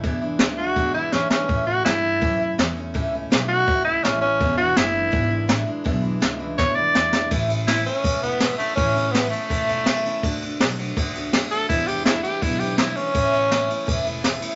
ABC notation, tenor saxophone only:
X:1
M:4/4
L:1/8
Q:1/4=165
K:A
V:1 name="Tenor saxophone"
z3 F2 E C C- | C F E4 z2 | z3 F2 E C C- | C F E4 z2 |
z4 c d3 | z2 E C2 B,2 A, | C2 B, A,4- A,- | A, z6 A |
E =G E G E G E C- | C4- C z3 |]